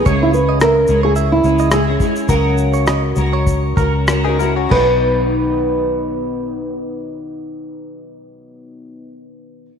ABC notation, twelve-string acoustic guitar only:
X:1
M:4/4
L:1/16
Q:"Swing 16ths" 1/4=94
K:B
V:1 name="Twelve-string acoustic guitar"
[C,G,CEG]6 [G,CEG]4 [G,CEG]2 [G,CEG] [CEG] [G,CEG]2 | [C,F,CFA]6 [F,CFA]4 [F,CFA]2 [F,CFA] [CFA] [F,CFA]2 | [B,,D,F,B,DB]16- | [B,,D,F,B,DB]16 |]